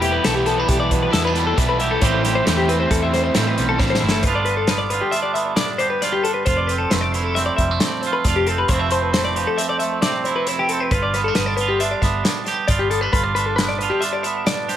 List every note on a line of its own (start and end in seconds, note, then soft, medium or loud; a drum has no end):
0.00 0.18 E1 loud
0.00 1.57 E2 medium
0.00 0.24 E3 medium
0.00 0.26 E3 medium
0.00 0.70 G3 medium
0.00 0.24 G3 medium
0.00 0.24 B3 medium
0.00 0.26 E4 medium
0.00 0.13 G4 medium
0.00 closed hi-hat medium
0.05 1.81 G4 medium
0.12 0.24 B4 medium
0.24 0.63 B1 medium
0.24 1.11 E3 medium
0.24 2.00 E3 medium
0.24 0.46 G3 medium
0.24 0.44 B3 medium
0.24 0.45 E4 medium
0.24 0.35 A4 medium
0.24 snare loud
0.24 closed hi-hat medium
0.35 0.46 G4 medium
0.45 1.11 G3 medium
0.45 1.12 B3 medium
0.45 0.60 B3 medium
0.45 1.12 E4 medium
0.45 0.58 A4 medium
0.45 closed hi-hat medium
0.58 1.14 D4 soft
0.58 0.68 B4 medium
0.68 1.07 B1 medium
0.68 1.38 G3 medium
0.68 0.79 G4 medium
0.68 kick loud
0.68 closed hi-hat medium
0.80 0.91 D5 medium
0.91 2.00 B2 medium
0.91 1.01 B4 medium
0.91 kick medium
0.91 closed hi-hat medium
1.03 1.12 B4 medium
1.11 1.52 E2 medium
1.11 1.55 E3 medium
1.11 1.35 G3 loud
1.11 1.34 B3 loud
1.11 1.33 E4 medium
1.11 1.24 A4 medium
1.11 snare loud
1.11 closed hi-hat medium
1.16 1.27 B3 medium
1.25 2.04 D4 medium
1.25 1.46 B4 medium
1.34 1.57 G3 medium
1.34 1.56 B3 medium
1.34 1.57 E4 medium
1.34 closed hi-hat medium
1.38 2.03 G3 medium
1.47 1.58 A4 medium
1.56 1.96 B1 medium
1.56 2.02 E2 medium
1.56 2.00 E3 medium
1.56 1.80 G3 medium
1.56 1.79 B3 medium
1.56 1.77 E4 loud
1.56 1.68 B4 medium
1.56 kick loud
1.56 closed hi-hat medium
1.69 1.79 B4 medium
1.79 2.01 G3 medium
1.79 2.01 B3 medium
1.79 2.00 E4 medium
1.79 2.04 G4 medium
1.79 1.91 E5 medium
1.79 closed hi-hat medium
1.91 2.02 A4 medium
2.01 2.40 A1 loud
2.01 2.46 A2 medium
2.01 3.77 A2 medium
2.01 2.44 E3 medium
2.01 2.47 E3 medium
2.01 2.91 G3 medium
2.01 2.23 A3 medium
2.01 2.23 C4 loud
2.01 2.67 C4 medium
2.01 2.22 E4 loud
2.01 2.24 G4 medium
2.01 2.24 C5 medium
2.01 kick loud
2.01 closed hi-hat medium
2.23 2.45 A3 medium
2.23 2.45 C4 medium
2.23 2.46 E4 medium
2.23 4.02 G4 medium
2.23 2.35 A4 medium
2.23 snare soft
2.23 closed hi-hat medium
2.35 2.46 C5 medium
2.45 2.85 E2 medium
2.45 2.90 E3 medium
2.45 4.22 E3 medium
2.45 2.68 A3 medium
2.45 2.67 C4 medium
2.45 2.67 E4 medium
2.45 2.57 A4 medium
2.45 snare loud
2.45 closed hi-hat medium
2.57 2.69 G4 medium
2.68 3.34 A3 medium
2.68 3.35 C4 medium
2.68 3.35 E4 medium
2.68 2.79 B4 medium
2.68 closed hi-hat medium
2.80 2.91 C5 medium
2.91 3.29 E2 medium
2.91 3.58 G3 medium
2.91 3.02 A4 medium
2.91 kick loud
2.91 closed hi-hat medium
3.03 3.14 E5 medium
3.13 3.80 E2 medium
3.13 3.22 C5 medium
3.13 snare soft
3.13 closed hi-hat medium
3.24 3.35 C5 medium
3.34 3.77 A2 medium
3.34 3.55 A2 medium
3.34 3.78 E3 medium
3.34 3.56 A3 medium
3.34 4.22 C4 medium
3.34 3.56 C4 medium
3.34 3.55 E4 loud
3.34 3.47 A4 medium
3.34 snare loud
3.34 closed hi-hat medium
3.47 3.68 B4 medium
3.56 3.78 B1 medium
3.56 4.27 G3 medium
3.56 3.78 A3 medium
3.56 3.78 C4 medium
3.56 3.79 E4 medium
3.56 closed hi-hat medium
3.69 3.79 A4 medium
3.78 4.00 A1 medium
3.78 4.22 A2 medium
3.78 4.24 A2 medium
3.78 4.23 E3 medium
3.78 4.02 A3 loud
3.78 4.01 C4 medium
3.78 4.00 E4 medium
3.78 3.89 C5 medium
3.78 kick loud
3.78 snare medium
3.90 4.02 C5 medium
3.95 snare medium
4.01 4.22 G1 medium
4.01 4.23 A3 medium
4.01 4.23 C4 medium
4.01 4.23 E4 medium
4.01 4.25 E4 medium
4.01 4.13 E5 medium
4.09 4.23 A4 medium
4.09 snare loud
4.23 5.00 G1 medium
4.23 5.58 G2 medium
4.23 4.90 D3 medium
4.23 4.35 B4 medium
4.23 kick loud
4.23 closed hi-hat medium
4.27 4.69 B3 soft
4.27 4.48 D4 medium
4.27 4.92 F4 medium
4.35 4.47 D5 medium
4.45 5.15 D4 medium
4.45 4.57 B4 medium
4.45 closed hi-hat medium
4.57 4.68 A4 medium
4.67 5.34 B3 medium
4.67 4.79 B4 medium
4.67 snare loud
4.67 closed hi-hat medium
4.78 4.90 D5 medium
4.90 7.13 D3 medium
4.90 5.80 F4 medium
4.90 5.02 B4 medium
4.90 closed hi-hat medium
5.01 5.13 G4 medium
5.11 5.22 E5 medium
5.11 closed hi-hat medium
5.16 5.58 D4 medium
5.22 5.34 D5 medium
5.34 6.44 B3 medium
5.34 5.56 E5 medium
5.34 closed hi-hat medium
5.56 6.01 G2 medium
5.56 6.25 D4 soft
5.56 5.79 D5 medium
5.56 snare loud
5.56 closed hi-hat medium
5.78 6.02 G4 medium
5.78 5.90 C5 medium
5.78 closed hi-hat medium
5.90 6.02 B4 medium
6.02 6.44 G2 medium
6.02 6.47 F4 medium
6.02 6.13 D5 medium
6.02 snare soft
6.02 closed hi-hat medium
6.12 6.24 G4 medium
6.24 6.45 D4 medium
6.24 6.34 A4 medium
6.24 closed hi-hat medium
6.34 6.45 B4 medium
6.46 6.85 F1 loud
6.46 7.80 F2 medium
6.46 7.14 F4 medium
6.46 6.57 C5 medium
6.46 kick loud
6.46 closed hi-hat medium
6.57 6.69 D5 medium
6.67 7.37 C4 medium
6.67 6.78 B4 medium
6.67 closed hi-hat medium
6.78 6.90 A4 medium
6.90 7.49 F1 medium
6.90 7.59 A3 medium
6.90 7.01 B4 medium
6.90 snare loud
6.90 closed hi-hat medium
7.01 7.12 D5 medium
7.12 8.70 D3 medium
7.12 8.03 E4 medium
7.12 7.24 C5 medium
7.12 closed hi-hat medium
7.24 7.36 A4 medium
7.35 7.81 C4 medium
7.35 7.46 E5 medium
7.35 snare soft
7.35 closed hi-hat medium
7.46 7.56 D5 medium
7.57 7.78 F1 medium
7.57 7.71 G3 medium
7.57 7.79 E5 medium
7.57 kick medium
7.57 closed hi-hat medium
7.71 8.70 A3 soft
7.79 8.26 F2 medium
7.79 8.49 C4 medium
7.79 8.02 D5 medium
7.79 snare loud
7.79 closed hi-hat medium
8.02 8.13 C5 medium
8.02 closed hi-hat soft
8.07 8.28 F4 medium
8.13 8.25 B4 medium
8.24 8.63 F1 medium
8.24 8.68 F2 medium
8.24 8.74 F4 medium
8.24 8.36 D5 medium
8.24 kick loud
8.24 snare soft
8.24 closed hi-hat medium
8.36 8.47 G4 medium
8.47 8.68 C4 medium
8.47 8.58 A4 medium
8.47 closed hi-hat medium
8.58 8.69 B4 medium
8.68 9.45 F1 medium
8.68 10.47 F2 medium
8.68 9.36 F3 medium
8.68 8.79 C5 medium
8.68 kick loud
8.68 closed hi-hat medium
8.73 9.15 A3 medium
8.73 8.93 C4 medium
8.73 9.36 E4 medium
8.79 8.91 E5 medium
8.91 9.58 C4 medium
8.91 9.02 C5 medium
8.91 closed hi-hat medium
9.02 9.13 B4 medium
9.13 9.80 A3 medium
9.13 9.24 C5 medium
9.13 snare loud
9.13 closed hi-hat medium
9.25 9.35 D5 medium
9.35 10.95 F3 medium
9.35 10.25 G4 soft
9.35 9.47 B4 medium
9.35 closed hi-hat medium
9.47 9.59 A4 medium
9.58 10.03 C4 medium
9.58 9.69 E5 medium
9.58 closed hi-hat medium
9.69 9.79 D5 medium
9.79 10.90 A3 medium
9.79 10.02 E5 medium
9.79 closed hi-hat medium
10.02 10.90 C3 medium
10.02 10.70 C4 medium
10.02 10.24 D5 medium
10.02 snare loud
10.02 closed hi-hat medium
10.24 10.48 E4 medium
10.24 10.35 C5 medium
10.24 closed hi-hat medium
10.36 10.47 B4 medium
10.47 10.90 F2 medium
10.47 10.93 E4 medium
10.47 10.59 C5 medium
10.47 closed hi-hat medium
10.59 10.69 G4 medium
10.69 10.90 C4 medium
10.69 10.80 A4 medium
10.69 closed hi-hat medium
10.80 10.91 B4 medium
10.91 11.29 G1 loud
10.91 12.23 G2 medium
10.91 11.61 F4 medium
10.91 11.03 B4 medium
10.91 kick loud
10.91 closed hi-hat medium
11.02 11.14 D5 medium
11.14 11.28 B3 medium
11.14 11.24 B4 medium
11.14 snare soft
11.14 closed hi-hat medium
11.24 11.82 D4 soft
11.24 11.35 A4 medium
11.35 11.94 G1 medium
11.35 11.46 B4 medium
11.35 snare loud
11.35 closed hi-hat medium
11.39 12.03 B3 medium
11.46 11.56 D5 medium
11.57 13.81 D3 medium
11.57 11.69 B4 medium
11.57 closed hi-hat medium
11.61 12.47 F4 medium
11.68 11.80 G4 medium
11.80 12.24 D4 medium
11.80 11.92 E5 medium
11.80 closed hi-hat medium
11.91 12.02 D5 medium
12.02 12.21 G1 medium
12.02 12.91 B3 medium
12.02 12.24 E5 medium
12.02 kick medium
12.02 snare soft
12.02 closed hi-hat medium
12.24 12.67 G2 medium
12.24 12.92 D4 medium
12.24 12.45 D5 medium
12.24 snare loud
12.24 closed hi-hat medium
12.45 12.70 G4 medium
12.45 12.56 C5 medium
12.45 snare soft
12.45 closed hi-hat medium
12.56 12.67 B4 medium
12.68 13.07 G1 medium
12.68 13.11 G2 medium
12.68 13.14 F4 medium
12.68 12.80 D5 medium
12.68 kick loud
12.68 closed hi-hat medium
12.79 12.90 G4 medium
12.91 13.03 B3 medium
12.91 13.01 A4 medium
12.91 closed hi-hat medium
13.01 13.14 D4 soft
13.01 13.11 B4 medium
13.13 13.89 G1 medium
13.13 14.44 G2 medium
13.13 13.82 F4 medium
13.13 13.24 B4 medium
13.13 kick loud
13.13 closed hi-hat medium
13.24 13.35 D5 medium
13.35 14.03 D4 medium
13.35 13.46 B4 medium
13.35 closed hi-hat medium
13.46 13.56 A4 medium
13.56 14.24 B3 medium
13.56 13.68 B4 medium
13.56 snare loud
13.56 closed hi-hat medium
13.69 13.79 D5 medium
13.79 14.77 D3 medium
13.79 14.68 F4 soft
13.79 13.91 B4 medium
13.79 closed hi-hat medium
13.90 14.02 G4 medium
14.01 14.45 D4 medium
14.01 14.13 E5 medium
14.01 closed hi-hat medium
14.13 14.23 D5 medium
14.23 14.77 B3 medium
14.23 14.46 E5 medium
14.23 closed hi-hat medium
14.45 14.77 G2 medium
14.45 14.77 D4 medium
14.45 14.69 D5 medium
14.45 snare loud
14.45 closed hi-hat medium
14.69 14.77 G4 medium
14.69 14.77 C5 medium
14.69 snare soft
14.69 closed hi-hat medium